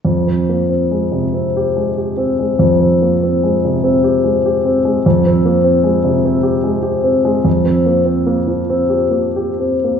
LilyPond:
\new Staff \with { instrumentName = "Grand piano" } { \time 3/4 \key f \minor \tempo 4 = 73 f,16 c'16 bes16 c'16 aes16 c16 c'16 g'16 aes16 g'16 c'16 aes16 | f,16 c'16 bes16 c'16 aes16 c16 c'16 g'16 aes16 g'16 c'16 aes16 | f,16 c'16 bes16 c'16 aes16 c16 c'16 g'16 aes16 g'16 c'16 aes16 | f,16 c'16 bes16 c'16 bes16 f16 c'16 g'16 bes16 g'16 c'16 bes16 | }